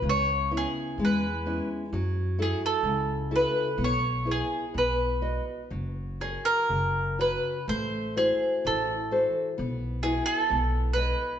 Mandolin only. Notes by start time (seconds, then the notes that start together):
0.09 C#5
0.57 G#4
1.05 B4
2.42 G#4
2.66 A4
3.36 B4
3.84 C#5
4.31 G#4
4.78 B4
6.21 G#4
6.45 A#4
7.21 B4
7.69 C5
8.18 G#4
8.67 A4
10.03 G#4
10.26 G#4
10.37 A4
10.93 B4